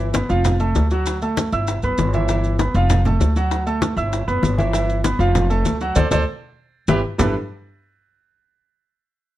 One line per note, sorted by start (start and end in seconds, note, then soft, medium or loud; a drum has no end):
0.00 0.24 G1 medium
0.13 0.26 B3 medium
0.13 0.26 B4 medium
0.13 0.27 B5 medium
0.13 high bongo medium
0.13 high conga medium
0.13 maracas medium
0.29 0.72 F1 medium
0.29 0.54 F3 medium
0.29 0.55 F4 medium
0.29 0.55 F5 medium
0.29 high bongo soft
0.29 high conga soft
0.29 maracas soft
0.45 high bongo medium
0.45 high conga soft
0.45 low conga medium
0.45 maracas medium
0.60 0.85 A3 medium
0.60 0.85 A4 medium
0.60 0.86 A5 medium
0.60 high bongo soft
0.60 high conga soft
0.60 maracas soft
0.75 1.47 D2 medium
0.75 high bongo soft
0.75 low bongo medium
0.75 maracas medium
0.91 1.16 F#3 medium
0.91 1.16 F#4 medium
0.91 1.17 F#5 medium
0.91 high bongo soft
0.91 high conga soft
0.91 maracas soft
1.06 high bongo medium
1.06 high conga soft
1.06 maracas medium
1.22 1.47 A3 medium
1.22 1.47 A4 medium
1.22 1.47 A5 medium
1.22 high conga soft
1.22 maracas soft
1.37 high bongo medium
1.37 high conga medium
1.37 maracas medium
1.52 1.81 G1 medium
1.52 1.77 E4 medium
1.52 1.78 E5 medium
1.52 1.78 E6 medium
1.52 high bongo soft
1.52 high conga soft
1.52 maracas soft
1.67 high bongo medium
1.67 high conga soft
1.67 maracas medium
1.82 1.97 F#1 medium
1.82 2.08 B3 medium
1.82 2.09 B4 medium
1.82 2.09 B5 medium
1.82 high bongo soft
1.82 high conga soft
1.82 maracas soft
1.98 2.69 G1 medium
1.98 high bongo soft
1.98 low bongo medium
1.98 high conga medium
1.98 maracas medium
2.13 2.26 E3 medium
2.13 2.27 E4 medium
2.13 2.27 E5 medium
2.13 high bongo soft
2.13 high conga medium
2.13 maracas soft
2.28 2.54 E3 medium
2.28 2.55 E4 medium
2.28 2.55 E5 medium
2.28 high bongo medium
2.28 high conga soft
2.28 maracas medium
2.44 high conga soft
2.44 maracas soft
2.59 2.72 B3 medium
2.59 2.73 B4 medium
2.59 2.73 B5 medium
2.59 high bongo medium
2.59 high conga medium
2.59 maracas medium
2.74 3.17 F1 loud
2.74 3.00 F3 medium
2.74 3.00 F4 medium
2.74 3.01 F5 medium
2.74 high bongo soft
2.74 high conga soft
2.74 maracas soft
2.90 high bongo medium
2.90 high conga soft
2.90 low conga medium
2.90 maracas medium
3.05 3.31 A3 medium
3.05 3.31 A4 medium
3.05 3.31 A5 medium
3.05 high bongo soft
3.05 high conga soft
3.05 low conga medium
3.05 maracas soft
3.20 3.92 D2 medium
3.20 high bongo soft
3.20 low bongo medium
3.20 high conga soft
3.20 maracas medium
3.36 3.61 F#3 medium
3.36 3.62 F#4 medium
3.36 3.62 F#5 medium
3.36 high bongo soft
3.36 high conga soft
3.36 maracas soft
3.51 high bongo medium
3.51 high conga soft
3.51 maracas medium
3.66 3.92 A3 medium
3.66 3.92 A4 medium
3.66 3.92 A5 medium
3.66 high conga soft
3.66 maracas soft
3.82 high bongo medium
3.82 high conga medium
3.82 maracas medium
3.97 4.25 G1 medium
3.97 4.22 E4 medium
3.97 4.22 E5 medium
3.97 4.23 E6 medium
3.97 high bongo soft
3.97 high conga soft
3.97 maracas soft
4.12 high bongo medium
4.12 high conga soft
4.12 maracas medium
4.28 4.42 F#1 medium
4.28 4.53 B3 medium
4.28 4.53 B4 medium
4.28 4.53 B5 medium
4.28 high bongo soft
4.28 high conga soft
4.28 maracas soft
4.42 5.14 G1 medium
4.42 high bongo soft
4.42 low bongo medium
4.42 high conga medium
4.42 maracas medium
4.58 4.71 E3 medium
4.58 4.71 E4 medium
4.58 4.71 E5 medium
4.58 high bongo soft
4.58 high conga medium
4.58 maracas soft
4.73 4.99 E3 medium
4.73 4.99 E4 medium
4.73 4.99 E5 medium
4.73 high bongo medium
4.73 high conga soft
4.73 maracas medium
4.89 high conga soft
4.89 maracas soft
5.04 5.17 B3 medium
5.04 5.17 B4 medium
5.04 5.17 B5 medium
5.04 high bongo medium
5.04 high conga medium
5.04 maracas medium
5.19 5.62 F1 loud
5.19 5.45 F3 medium
5.19 5.45 F4 medium
5.19 5.45 F5 medium
5.19 high bongo soft
5.19 high conga soft
5.19 maracas soft
5.35 high bongo medium
5.35 high conga soft
5.35 low conga medium
5.35 maracas medium
5.50 5.75 A3 medium
5.50 5.75 A4 medium
5.50 5.76 A5 medium
5.50 high bongo soft
5.50 high conga soft
5.50 maracas soft
5.65 5.94 D2 medium
5.65 high bongo soft
5.65 low bongo medium
5.65 maracas medium
5.81 5.94 F#3 medium
5.81 5.94 F#4 medium
5.81 5.94 F#5 medium
5.81 high bongo soft
5.81 high conga soft
5.81 maracas soft
5.95 6.08 D2 loud
5.95 6.06 A4 medium
5.95 6.06 C5 loud
5.95 6.06 D5 loud
5.95 low bongo loud
5.95 high conga loud
5.95 maracas medium
6.11 6.23 D2 loud
6.11 6.21 A4 loud
6.11 6.22 C5 loud
6.11 6.22 D5 medium
6.11 low bongo loud
6.11 high conga loud
6.11 maracas loud
6.88 7.00 G1 loud
6.88 6.99 E4 loud
6.88 6.98 G4 loud
6.88 6.98 B4 loud
6.88 low bongo loud
6.88 high conga loud
6.88 maracas medium
7.18 7.33 G1 medium
7.18 7.33 G3 medium
7.18 7.33 D4 medium
7.18 7.33 E4 medium
7.18 7.33 G4 medium
7.18 7.34 A4 medium
7.18 7.34 B4 medium
7.18 low bongo medium
7.18 low conga loud
7.18 maracas medium